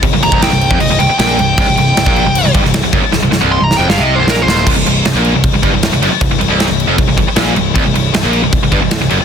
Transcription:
<<
  \new Staff \with { instrumentName = "Lead electric guitar" } { \time 4/4 \key c \minor \tempo 4 = 155 r8 bes''8 g''4 ees''8 g''8 g''4~ | g''8 g''2 r4. | r4 \tuplet 3/2 { c'''8 bes''8 g''8 f''8 ees''8 c''8 bes'8 c''4 } | r1 |
r1 | r1 | }
  \new Staff \with { instrumentName = "Distorted electric guitar" } { \clef bass \time 4/4 \key c \minor c,16 c,16 c,16 c,8 c,8 f,16 c,16 c,16 c,16 r16 bes,8 c,8 | c,16 c,16 c,8 c,16 bes,8 c,8 c,16 g,16 c,8 c,16 fis,16 r16 | c,16 c,16 c,16 c,8 c,8 f,16 g,16 c8 c,16 bes,8 ees,8 | c,16 c,16 c,8 c,16 bes,8 c,8 c,16 g,16 c,8 c,16 fis,16 r16 |
c,16 c,16 c,16 c,8 c,8 f,16 c,16 c,16 c,16 r16 bes,8 c,8 | c,16 c,16 c,8 c,16 bes,8 c,8 c,16 g,16 c,8 c,16 fis,16 r16 | }
  \new Staff \with { instrumentName = "Distorted electric guitar" } { \clef bass \time 4/4 \key c \minor c,16 c,16 c,16 c,8 c,8 f,16 c,16 c,16 c,16 r16 bes,8 c,8 | c,16 c,16 c,8 c,16 bes,8 c,8 c,16 g,16 c,8 c,16 fis,16 r16 | c,16 c,16 c,16 c,8 c,8 f,16 g,16 c8 c,16 bes,8 ees,8 | c,16 c,16 c,8 c,16 bes,8 c,8 c,16 g,16 c,8 c,16 fis,16 r16 |
c,16 c,16 c,16 c,8 c,8 f,16 c,16 c,16 c,16 r16 bes,8 c,8 | c,16 c,16 c,8 c,16 bes,8 c,8 c,16 g,16 c,8 c,16 fis,16 r16 | }
  \new Staff \with { instrumentName = "Picked electric bass" } { \clef bass \time 4/4 \key c \minor c,,16 c,,16 c,,16 c,,8 c,,8 f,,16 c,,16 c,,16 c,,16 r16 bes,,8 c,,8 | c,,16 c,,16 c,,8 c,,16 bes,,8 c,,8 c,,16 g,,16 c,,8 c,,16 fis,,16 r16 | c,,16 c,,16 c,,16 c,,8 c,,8 f,,16 g,,16 c,8 c,,16 bes,,8 ees,,8 | c,,16 c,,16 c,,8 c,,16 bes,,8 c,,8 c,,16 g,,16 c,,8 c,,16 fis,,16 r16 |
c,,16 c,,16 c,,16 c,,8 c,,8 f,,16 c,,16 c,,16 c,,16 r16 bes,,8 c,,8 | c,,16 c,,16 c,,8 c,,16 bes,,8 c,,8 c,,16 g,,16 c,,8 c,,16 fis,,16 r16 | }
  \new DrumStaff \with { instrumentName = "Drums" } \drummode { \time 4/4 <cymc bd>8 cymc16 bd16 <cymc sn>8 cymc16 bd16 cymc8 cymc8 <cymc sn>8 cymc8 | <cymc bd>8 cymc8 <cymc sn>16 bd16 cymc8 cymc8 <cymc bd>16 sn16 <cymc sn>8 <cymc bd>8 | sn8 sn8 r8 sn8 sn4 sn8 sn8 | <cymc bd>8 cymc8 <cymc sn>8 cymc8 <cymc bd>8 <cymc bd>8 <cymc sn>8 cymc8 |
<cymc bd>8 cymc8 <cymc sn>8 cymc8 <cymc bd>8 <cymc bd>8 <cymc sn>8 cymc8 | <cymc bd>8 cymc8 <cymc sn>8 cymc8 <cymc bd>8 <cymc bd>8 <cymc sn>8 cymc8 | }
>>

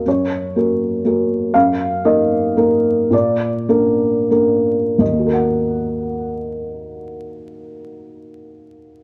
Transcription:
\new Staff \with { instrumentName = "Felt piano" } { \time 3/4 \key ees \minor \tempo 4 = 98 << { des''4 r2 | f''4 ees''2 | d''4 bes'4. r8 | <ees, ees bes ges' bes' ees'' ges''>2.~ |
<ees, ees bes ges' bes' ees'' ges''>2. | } \\ { ges,4 <bes ges' bes'>4 <bes ges' bes'>4 | ges,4 <bes ees' bes'>4 <bes ees' bes'>4 | bes,4 <bes d'>4 <bes d' bes'>4 | r2. |
r2. | } >> }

